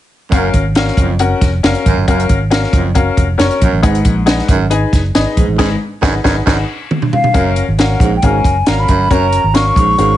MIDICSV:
0, 0, Header, 1, 6, 480
1, 0, Start_track
1, 0, Key_signature, 6, "major"
1, 0, Tempo, 439239
1, 350, Time_signature, 4, 2, 24, 8
1, 11114, End_track
2, 0, Start_track
2, 0, Title_t, "Flute"
2, 0, Program_c, 0, 73
2, 7792, Note_on_c, 0, 77, 92
2, 8237, Note_off_c, 0, 77, 0
2, 8522, Note_on_c, 0, 78, 75
2, 8891, Note_off_c, 0, 78, 0
2, 8919, Note_on_c, 0, 79, 62
2, 9013, Note_on_c, 0, 80, 79
2, 9030, Note_off_c, 0, 79, 0
2, 9487, Note_on_c, 0, 82, 89
2, 9504, Note_off_c, 0, 80, 0
2, 9609, Note_on_c, 0, 83, 87
2, 9626, Note_off_c, 0, 82, 0
2, 9959, Note_on_c, 0, 82, 96
2, 9976, Note_off_c, 0, 83, 0
2, 10432, Note_on_c, 0, 85, 101
2, 10448, Note_off_c, 0, 82, 0
2, 11114, Note_off_c, 0, 85, 0
2, 11114, End_track
3, 0, Start_track
3, 0, Title_t, "Upright piano"
3, 0, Program_c, 1, 0
3, 347, Note_on_c, 1, 61, 86
3, 351, Note_on_c, 1, 66, 73
3, 353, Note_on_c, 1, 70, 71
3, 356, Note_on_c, 1, 77, 94
3, 666, Note_off_c, 1, 61, 0
3, 669, Note_off_c, 1, 66, 0
3, 670, Note_off_c, 1, 70, 0
3, 672, Note_off_c, 1, 77, 0
3, 827, Note_on_c, 1, 61, 78
3, 831, Note_on_c, 1, 66, 70
3, 834, Note_on_c, 1, 70, 66
3, 836, Note_on_c, 1, 77, 83
3, 1147, Note_off_c, 1, 61, 0
3, 1148, Note_off_c, 1, 66, 0
3, 1150, Note_off_c, 1, 70, 0
3, 1151, Note_off_c, 1, 77, 0
3, 1307, Note_on_c, 1, 61, 80
3, 1309, Note_on_c, 1, 66, 71
3, 1313, Note_on_c, 1, 70, 73
3, 1314, Note_on_c, 1, 78, 91
3, 1626, Note_off_c, 1, 61, 0
3, 1627, Note_off_c, 1, 66, 0
3, 1629, Note_off_c, 1, 70, 0
3, 1630, Note_off_c, 1, 78, 0
3, 1784, Note_on_c, 1, 61, 82
3, 1791, Note_on_c, 1, 66, 74
3, 1791, Note_on_c, 1, 70, 75
3, 1797, Note_on_c, 1, 77, 94
3, 2105, Note_off_c, 1, 61, 0
3, 2108, Note_off_c, 1, 66, 0
3, 2108, Note_off_c, 1, 70, 0
3, 2111, Note_off_c, 1, 77, 0
3, 2267, Note_on_c, 1, 61, 84
3, 2272, Note_on_c, 1, 66, 74
3, 2276, Note_on_c, 1, 70, 75
3, 2277, Note_on_c, 1, 77, 90
3, 2586, Note_off_c, 1, 61, 0
3, 2589, Note_off_c, 1, 66, 0
3, 2590, Note_off_c, 1, 70, 0
3, 2591, Note_off_c, 1, 77, 0
3, 2736, Note_on_c, 1, 61, 77
3, 2743, Note_on_c, 1, 66, 75
3, 2743, Note_on_c, 1, 70, 70
3, 2746, Note_on_c, 1, 77, 84
3, 3060, Note_off_c, 1, 61, 0
3, 3064, Note_off_c, 1, 66, 0
3, 3064, Note_off_c, 1, 70, 0
3, 3066, Note_off_c, 1, 77, 0
3, 3219, Note_on_c, 1, 61, 72
3, 3222, Note_on_c, 1, 66, 70
3, 3224, Note_on_c, 1, 70, 70
3, 3228, Note_on_c, 1, 77, 82
3, 3542, Note_off_c, 1, 61, 0
3, 3544, Note_off_c, 1, 66, 0
3, 3544, Note_off_c, 1, 70, 0
3, 3546, Note_off_c, 1, 77, 0
3, 3690, Note_on_c, 1, 61, 81
3, 3693, Note_on_c, 1, 66, 71
3, 3694, Note_on_c, 1, 70, 72
3, 3701, Note_on_c, 1, 73, 96
3, 4017, Note_off_c, 1, 61, 0
3, 4019, Note_off_c, 1, 66, 0
3, 4019, Note_off_c, 1, 70, 0
3, 4023, Note_off_c, 1, 73, 0
3, 4178, Note_on_c, 1, 44, 78
3, 4180, Note_on_c, 1, 63, 81
3, 4181, Note_on_c, 1, 68, 74
3, 4183, Note_on_c, 1, 71, 72
3, 4186, Note_on_c, 1, 78, 95
3, 4502, Note_off_c, 1, 63, 0
3, 4503, Note_off_c, 1, 68, 0
3, 4504, Note_off_c, 1, 71, 0
3, 4505, Note_off_c, 1, 78, 0
3, 4655, Note_on_c, 1, 63, 78
3, 4656, Note_on_c, 1, 68, 67
3, 4662, Note_on_c, 1, 71, 74
3, 4662, Note_on_c, 1, 78, 88
3, 4859, Note_off_c, 1, 44, 0
3, 4980, Note_off_c, 1, 63, 0
3, 4980, Note_off_c, 1, 68, 0
3, 4983, Note_off_c, 1, 71, 0
3, 4983, Note_off_c, 1, 78, 0
3, 5138, Note_on_c, 1, 63, 77
3, 5142, Note_on_c, 1, 68, 67
3, 5145, Note_on_c, 1, 80, 79
3, 5147, Note_on_c, 1, 71, 70
3, 5461, Note_off_c, 1, 63, 0
3, 5463, Note_off_c, 1, 68, 0
3, 5465, Note_off_c, 1, 80, 0
3, 5466, Note_off_c, 1, 71, 0
3, 5626, Note_on_c, 1, 63, 84
3, 5627, Note_on_c, 1, 68, 76
3, 5628, Note_on_c, 1, 71, 79
3, 5634, Note_on_c, 1, 75, 85
3, 5945, Note_off_c, 1, 63, 0
3, 5946, Note_off_c, 1, 68, 0
3, 5946, Note_off_c, 1, 71, 0
3, 5949, Note_off_c, 1, 75, 0
3, 6100, Note_on_c, 1, 63, 91
3, 6106, Note_on_c, 1, 68, 97
3, 6108, Note_on_c, 1, 44, 96
3, 6109, Note_on_c, 1, 71, 95
3, 6112, Note_on_c, 1, 75, 98
3, 6266, Note_off_c, 1, 63, 0
3, 6270, Note_off_c, 1, 68, 0
3, 6271, Note_off_c, 1, 44, 0
3, 6271, Note_off_c, 1, 71, 0
3, 6273, Note_off_c, 1, 75, 0
3, 6580, Note_on_c, 1, 63, 92
3, 6583, Note_on_c, 1, 68, 97
3, 6588, Note_on_c, 1, 71, 91
3, 6591, Note_on_c, 1, 78, 87
3, 6746, Note_off_c, 1, 63, 0
3, 6748, Note_off_c, 1, 68, 0
3, 6751, Note_off_c, 1, 71, 0
3, 6753, Note_off_c, 1, 78, 0
3, 6822, Note_on_c, 1, 63, 92
3, 6822, Note_on_c, 1, 68, 97
3, 6824, Note_on_c, 1, 71, 91
3, 6828, Note_on_c, 1, 78, 89
3, 6987, Note_off_c, 1, 63, 0
3, 6987, Note_off_c, 1, 68, 0
3, 6989, Note_off_c, 1, 71, 0
3, 6991, Note_off_c, 1, 78, 0
3, 7064, Note_on_c, 1, 63, 93
3, 7071, Note_on_c, 1, 68, 89
3, 7073, Note_on_c, 1, 71, 88
3, 7074, Note_on_c, 1, 78, 90
3, 7229, Note_off_c, 1, 63, 0
3, 7232, Note_off_c, 1, 68, 0
3, 7234, Note_off_c, 1, 71, 0
3, 7235, Note_off_c, 1, 78, 0
3, 8021, Note_on_c, 1, 66, 82
3, 8022, Note_on_c, 1, 61, 95
3, 8023, Note_on_c, 1, 70, 83
3, 8030, Note_on_c, 1, 77, 100
3, 8343, Note_off_c, 1, 66, 0
3, 8344, Note_off_c, 1, 61, 0
3, 8345, Note_off_c, 1, 70, 0
3, 8348, Note_off_c, 1, 77, 0
3, 8508, Note_on_c, 1, 61, 66
3, 8510, Note_on_c, 1, 66, 59
3, 8513, Note_on_c, 1, 70, 64
3, 8516, Note_on_c, 1, 77, 70
3, 8827, Note_off_c, 1, 61, 0
3, 8828, Note_off_c, 1, 66, 0
3, 8829, Note_off_c, 1, 70, 0
3, 8831, Note_off_c, 1, 77, 0
3, 8996, Note_on_c, 1, 61, 67
3, 8997, Note_on_c, 1, 66, 59
3, 9003, Note_on_c, 1, 70, 60
3, 9005, Note_on_c, 1, 77, 70
3, 9311, Note_off_c, 1, 61, 0
3, 9312, Note_off_c, 1, 66, 0
3, 9315, Note_off_c, 1, 70, 0
3, 9316, Note_off_c, 1, 77, 0
3, 9470, Note_on_c, 1, 61, 66
3, 9474, Note_on_c, 1, 70, 65
3, 9477, Note_on_c, 1, 66, 66
3, 9481, Note_on_c, 1, 77, 78
3, 9789, Note_off_c, 1, 61, 0
3, 9790, Note_off_c, 1, 70, 0
3, 9792, Note_off_c, 1, 66, 0
3, 9794, Note_off_c, 1, 77, 0
3, 9949, Note_on_c, 1, 61, 94
3, 9953, Note_on_c, 1, 66, 84
3, 9957, Note_on_c, 1, 70, 83
3, 9962, Note_on_c, 1, 73, 106
3, 10268, Note_off_c, 1, 61, 0
3, 10270, Note_off_c, 1, 66, 0
3, 10272, Note_off_c, 1, 70, 0
3, 10274, Note_off_c, 1, 73, 0
3, 10422, Note_on_c, 1, 61, 70
3, 10423, Note_on_c, 1, 66, 62
3, 10427, Note_on_c, 1, 70, 59
3, 10432, Note_on_c, 1, 77, 75
3, 10745, Note_off_c, 1, 61, 0
3, 10745, Note_off_c, 1, 66, 0
3, 10747, Note_off_c, 1, 70, 0
3, 10750, Note_off_c, 1, 77, 0
3, 10904, Note_on_c, 1, 61, 62
3, 10908, Note_on_c, 1, 66, 66
3, 10911, Note_on_c, 1, 70, 60
3, 10914, Note_on_c, 1, 77, 72
3, 11114, Note_off_c, 1, 61, 0
3, 11114, Note_off_c, 1, 66, 0
3, 11114, Note_off_c, 1, 70, 0
3, 11114, Note_off_c, 1, 77, 0
3, 11114, End_track
4, 0, Start_track
4, 0, Title_t, "Baritone saxophone"
4, 0, Program_c, 2, 67
4, 344, Note_on_c, 2, 42, 74
4, 538, Note_off_c, 2, 42, 0
4, 1073, Note_on_c, 2, 41, 71
4, 1263, Note_off_c, 2, 41, 0
4, 2032, Note_on_c, 2, 42, 74
4, 2223, Note_off_c, 2, 42, 0
4, 2272, Note_on_c, 2, 42, 75
4, 2462, Note_off_c, 2, 42, 0
4, 2995, Note_on_c, 2, 41, 70
4, 3184, Note_off_c, 2, 41, 0
4, 3950, Note_on_c, 2, 42, 75
4, 4141, Note_off_c, 2, 42, 0
4, 4186, Note_on_c, 2, 44, 77
4, 4379, Note_off_c, 2, 44, 0
4, 4911, Note_on_c, 2, 42, 76
4, 5101, Note_off_c, 2, 42, 0
4, 5863, Note_on_c, 2, 44, 67
4, 6057, Note_off_c, 2, 44, 0
4, 6103, Note_on_c, 2, 44, 95
4, 6227, Note_off_c, 2, 44, 0
4, 6582, Note_on_c, 2, 42, 88
4, 6706, Note_off_c, 2, 42, 0
4, 6820, Note_on_c, 2, 42, 86
4, 6945, Note_off_c, 2, 42, 0
4, 7058, Note_on_c, 2, 42, 86
4, 7184, Note_off_c, 2, 42, 0
4, 8026, Note_on_c, 2, 42, 77
4, 8219, Note_off_c, 2, 42, 0
4, 8748, Note_on_c, 2, 44, 71
4, 8940, Note_off_c, 2, 44, 0
4, 9000, Note_on_c, 2, 44, 70
4, 9188, Note_off_c, 2, 44, 0
4, 9709, Note_on_c, 2, 42, 67
4, 9901, Note_off_c, 2, 42, 0
4, 9945, Note_on_c, 2, 42, 72
4, 10139, Note_off_c, 2, 42, 0
4, 10672, Note_on_c, 2, 44, 74
4, 10863, Note_off_c, 2, 44, 0
4, 10911, Note_on_c, 2, 44, 76
4, 11102, Note_off_c, 2, 44, 0
4, 11114, End_track
5, 0, Start_track
5, 0, Title_t, "Fingered electric bass"
5, 0, Program_c, 3, 33
5, 349, Note_on_c, 3, 30, 96
5, 539, Note_off_c, 3, 30, 0
5, 588, Note_on_c, 3, 32, 83
5, 967, Note_off_c, 3, 32, 0
5, 1061, Note_on_c, 3, 30, 86
5, 1443, Note_off_c, 3, 30, 0
5, 1545, Note_on_c, 3, 29, 89
5, 1736, Note_off_c, 3, 29, 0
5, 1789, Note_on_c, 3, 30, 88
5, 1883, Note_off_c, 3, 30, 0
5, 2032, Note_on_c, 3, 32, 80
5, 2125, Note_off_c, 3, 32, 0
5, 2151, Note_on_c, 3, 31, 74
5, 2245, Note_off_c, 3, 31, 0
5, 2271, Note_on_c, 3, 30, 90
5, 2459, Note_off_c, 3, 30, 0
5, 2507, Note_on_c, 3, 32, 81
5, 2886, Note_off_c, 3, 32, 0
5, 2981, Note_on_c, 3, 30, 83
5, 3363, Note_off_c, 3, 30, 0
5, 3469, Note_on_c, 3, 29, 83
5, 3658, Note_off_c, 3, 29, 0
5, 3706, Note_on_c, 3, 30, 88
5, 3801, Note_off_c, 3, 30, 0
5, 3952, Note_on_c, 3, 34, 75
5, 4045, Note_off_c, 3, 34, 0
5, 4071, Note_on_c, 3, 33, 81
5, 4164, Note_off_c, 3, 33, 0
5, 4189, Note_on_c, 3, 32, 92
5, 4378, Note_off_c, 3, 32, 0
5, 4428, Note_on_c, 3, 34, 83
5, 4807, Note_off_c, 3, 34, 0
5, 4902, Note_on_c, 3, 32, 70
5, 5283, Note_off_c, 3, 32, 0
5, 5384, Note_on_c, 3, 30, 91
5, 5575, Note_off_c, 3, 30, 0
5, 5633, Note_on_c, 3, 32, 89
5, 5725, Note_off_c, 3, 32, 0
5, 5869, Note_on_c, 3, 34, 80
5, 5963, Note_off_c, 3, 34, 0
5, 5988, Note_on_c, 3, 33, 80
5, 6083, Note_off_c, 3, 33, 0
5, 6111, Note_on_c, 3, 32, 95
5, 6272, Note_off_c, 3, 32, 0
5, 6589, Note_on_c, 3, 32, 93
5, 6752, Note_off_c, 3, 32, 0
5, 6827, Note_on_c, 3, 32, 99
5, 6991, Note_off_c, 3, 32, 0
5, 7068, Note_on_c, 3, 32, 101
5, 7231, Note_off_c, 3, 32, 0
5, 8024, Note_on_c, 3, 30, 88
5, 8310, Note_off_c, 3, 30, 0
5, 8394, Note_on_c, 3, 32, 74
5, 8676, Note_off_c, 3, 32, 0
5, 8745, Note_on_c, 3, 34, 82
5, 8936, Note_off_c, 3, 34, 0
5, 8991, Note_on_c, 3, 32, 81
5, 9180, Note_off_c, 3, 32, 0
5, 9230, Note_on_c, 3, 30, 80
5, 9419, Note_off_c, 3, 30, 0
5, 9482, Note_on_c, 3, 32, 87
5, 9667, Note_off_c, 3, 32, 0
5, 9715, Note_on_c, 3, 31, 72
5, 9902, Note_off_c, 3, 31, 0
5, 9953, Note_on_c, 3, 30, 87
5, 10236, Note_off_c, 3, 30, 0
5, 10314, Note_on_c, 3, 32, 76
5, 10597, Note_off_c, 3, 32, 0
5, 10667, Note_on_c, 3, 34, 78
5, 10858, Note_off_c, 3, 34, 0
5, 10910, Note_on_c, 3, 32, 87
5, 11099, Note_off_c, 3, 32, 0
5, 11114, End_track
6, 0, Start_track
6, 0, Title_t, "Drums"
6, 349, Note_on_c, 9, 36, 96
6, 351, Note_on_c, 9, 42, 88
6, 459, Note_off_c, 9, 36, 0
6, 461, Note_off_c, 9, 42, 0
6, 586, Note_on_c, 9, 42, 65
6, 588, Note_on_c, 9, 36, 76
6, 695, Note_off_c, 9, 42, 0
6, 698, Note_off_c, 9, 36, 0
6, 823, Note_on_c, 9, 42, 81
6, 833, Note_on_c, 9, 38, 92
6, 932, Note_off_c, 9, 42, 0
6, 942, Note_off_c, 9, 38, 0
6, 956, Note_on_c, 9, 38, 32
6, 1062, Note_on_c, 9, 36, 87
6, 1065, Note_off_c, 9, 38, 0
6, 1067, Note_on_c, 9, 42, 72
6, 1171, Note_off_c, 9, 36, 0
6, 1177, Note_off_c, 9, 42, 0
6, 1303, Note_on_c, 9, 42, 80
6, 1412, Note_off_c, 9, 42, 0
6, 1545, Note_on_c, 9, 36, 83
6, 1547, Note_on_c, 9, 42, 63
6, 1556, Note_on_c, 9, 38, 34
6, 1655, Note_off_c, 9, 36, 0
6, 1656, Note_off_c, 9, 42, 0
6, 1666, Note_off_c, 9, 38, 0
6, 1790, Note_on_c, 9, 42, 93
6, 1793, Note_on_c, 9, 38, 96
6, 1900, Note_off_c, 9, 42, 0
6, 1903, Note_off_c, 9, 38, 0
6, 1911, Note_on_c, 9, 42, 49
6, 2020, Note_off_c, 9, 42, 0
6, 2032, Note_on_c, 9, 36, 77
6, 2032, Note_on_c, 9, 42, 64
6, 2141, Note_off_c, 9, 36, 0
6, 2142, Note_off_c, 9, 42, 0
6, 2271, Note_on_c, 9, 36, 93
6, 2274, Note_on_c, 9, 42, 83
6, 2380, Note_off_c, 9, 36, 0
6, 2383, Note_off_c, 9, 42, 0
6, 2401, Note_on_c, 9, 42, 52
6, 2505, Note_off_c, 9, 42, 0
6, 2505, Note_on_c, 9, 42, 62
6, 2508, Note_on_c, 9, 36, 86
6, 2615, Note_off_c, 9, 42, 0
6, 2617, Note_off_c, 9, 36, 0
6, 2747, Note_on_c, 9, 42, 80
6, 2757, Note_on_c, 9, 38, 88
6, 2856, Note_off_c, 9, 42, 0
6, 2866, Note_off_c, 9, 38, 0
6, 2880, Note_on_c, 9, 38, 30
6, 2983, Note_on_c, 9, 36, 95
6, 2986, Note_on_c, 9, 42, 70
6, 2989, Note_off_c, 9, 38, 0
6, 3092, Note_off_c, 9, 36, 0
6, 3096, Note_off_c, 9, 42, 0
6, 3226, Note_on_c, 9, 42, 86
6, 3232, Note_on_c, 9, 36, 82
6, 3335, Note_off_c, 9, 42, 0
6, 3341, Note_off_c, 9, 36, 0
6, 3467, Note_on_c, 9, 36, 81
6, 3469, Note_on_c, 9, 42, 66
6, 3576, Note_off_c, 9, 36, 0
6, 3579, Note_off_c, 9, 42, 0
6, 3709, Note_on_c, 9, 42, 98
6, 3712, Note_on_c, 9, 38, 99
6, 3818, Note_off_c, 9, 42, 0
6, 3821, Note_off_c, 9, 38, 0
6, 3833, Note_on_c, 9, 42, 45
6, 3942, Note_off_c, 9, 42, 0
6, 3950, Note_on_c, 9, 42, 69
6, 3952, Note_on_c, 9, 36, 77
6, 4059, Note_off_c, 9, 42, 0
6, 4061, Note_off_c, 9, 36, 0
6, 4189, Note_on_c, 9, 36, 100
6, 4189, Note_on_c, 9, 42, 90
6, 4298, Note_off_c, 9, 36, 0
6, 4299, Note_off_c, 9, 42, 0
6, 4315, Note_on_c, 9, 42, 52
6, 4423, Note_off_c, 9, 42, 0
6, 4423, Note_on_c, 9, 42, 64
6, 4426, Note_on_c, 9, 36, 82
6, 4533, Note_off_c, 9, 42, 0
6, 4536, Note_off_c, 9, 36, 0
6, 4662, Note_on_c, 9, 42, 82
6, 4672, Note_on_c, 9, 38, 95
6, 4771, Note_off_c, 9, 42, 0
6, 4781, Note_off_c, 9, 38, 0
6, 4792, Note_on_c, 9, 38, 32
6, 4901, Note_on_c, 9, 36, 90
6, 4902, Note_off_c, 9, 38, 0
6, 4904, Note_on_c, 9, 42, 70
6, 5010, Note_off_c, 9, 36, 0
6, 5014, Note_off_c, 9, 42, 0
6, 5145, Note_on_c, 9, 42, 85
6, 5254, Note_off_c, 9, 42, 0
6, 5386, Note_on_c, 9, 36, 81
6, 5391, Note_on_c, 9, 42, 64
6, 5400, Note_on_c, 9, 38, 33
6, 5495, Note_off_c, 9, 36, 0
6, 5500, Note_off_c, 9, 42, 0
6, 5509, Note_off_c, 9, 38, 0
6, 5627, Note_on_c, 9, 42, 87
6, 5630, Note_on_c, 9, 38, 101
6, 5737, Note_off_c, 9, 42, 0
6, 5740, Note_off_c, 9, 38, 0
6, 5869, Note_on_c, 9, 42, 68
6, 5870, Note_on_c, 9, 36, 76
6, 5979, Note_off_c, 9, 36, 0
6, 5979, Note_off_c, 9, 42, 0
6, 6108, Note_on_c, 9, 36, 106
6, 6110, Note_on_c, 9, 49, 81
6, 6117, Note_on_c, 9, 38, 108
6, 6217, Note_off_c, 9, 36, 0
6, 6220, Note_off_c, 9, 49, 0
6, 6226, Note_off_c, 9, 38, 0
6, 6588, Note_on_c, 9, 36, 101
6, 6595, Note_on_c, 9, 38, 95
6, 6697, Note_off_c, 9, 36, 0
6, 6704, Note_off_c, 9, 38, 0
6, 6828, Note_on_c, 9, 36, 98
6, 6835, Note_on_c, 9, 38, 105
6, 6938, Note_off_c, 9, 36, 0
6, 6944, Note_off_c, 9, 38, 0
6, 7068, Note_on_c, 9, 36, 103
6, 7072, Note_on_c, 9, 49, 74
6, 7078, Note_on_c, 9, 38, 93
6, 7178, Note_off_c, 9, 36, 0
6, 7181, Note_off_c, 9, 49, 0
6, 7188, Note_off_c, 9, 38, 0
6, 7550, Note_on_c, 9, 45, 89
6, 7659, Note_off_c, 9, 45, 0
6, 7674, Note_on_c, 9, 43, 77
6, 7783, Note_off_c, 9, 43, 0
6, 7792, Note_on_c, 9, 43, 91
6, 7901, Note_off_c, 9, 43, 0
6, 7911, Note_on_c, 9, 43, 83
6, 8020, Note_off_c, 9, 43, 0
6, 8026, Note_on_c, 9, 36, 105
6, 8027, Note_on_c, 9, 42, 88
6, 8135, Note_off_c, 9, 36, 0
6, 8137, Note_off_c, 9, 42, 0
6, 8263, Note_on_c, 9, 42, 64
6, 8373, Note_off_c, 9, 42, 0
6, 8509, Note_on_c, 9, 42, 77
6, 8519, Note_on_c, 9, 38, 94
6, 8618, Note_off_c, 9, 42, 0
6, 8628, Note_off_c, 9, 38, 0
6, 8743, Note_on_c, 9, 36, 93
6, 8753, Note_on_c, 9, 42, 67
6, 8852, Note_off_c, 9, 36, 0
6, 8862, Note_off_c, 9, 42, 0
6, 8987, Note_on_c, 9, 42, 79
6, 8992, Note_on_c, 9, 36, 79
6, 9097, Note_off_c, 9, 42, 0
6, 9102, Note_off_c, 9, 36, 0
6, 9228, Note_on_c, 9, 36, 78
6, 9234, Note_on_c, 9, 42, 66
6, 9338, Note_off_c, 9, 36, 0
6, 9343, Note_off_c, 9, 42, 0
6, 9469, Note_on_c, 9, 42, 91
6, 9472, Note_on_c, 9, 38, 100
6, 9578, Note_off_c, 9, 42, 0
6, 9581, Note_off_c, 9, 38, 0
6, 9708, Note_on_c, 9, 42, 58
6, 9712, Note_on_c, 9, 36, 71
6, 9818, Note_off_c, 9, 42, 0
6, 9822, Note_off_c, 9, 36, 0
6, 9951, Note_on_c, 9, 36, 98
6, 9956, Note_on_c, 9, 42, 84
6, 10061, Note_off_c, 9, 36, 0
6, 10065, Note_off_c, 9, 42, 0
6, 10190, Note_on_c, 9, 42, 65
6, 10299, Note_off_c, 9, 42, 0
6, 10432, Note_on_c, 9, 42, 85
6, 10442, Note_on_c, 9, 38, 97
6, 10541, Note_off_c, 9, 42, 0
6, 10552, Note_off_c, 9, 38, 0
6, 10667, Note_on_c, 9, 36, 92
6, 10679, Note_on_c, 9, 42, 70
6, 10777, Note_off_c, 9, 36, 0
6, 10788, Note_off_c, 9, 42, 0
6, 10912, Note_on_c, 9, 42, 83
6, 11021, Note_off_c, 9, 42, 0
6, 11114, End_track
0, 0, End_of_file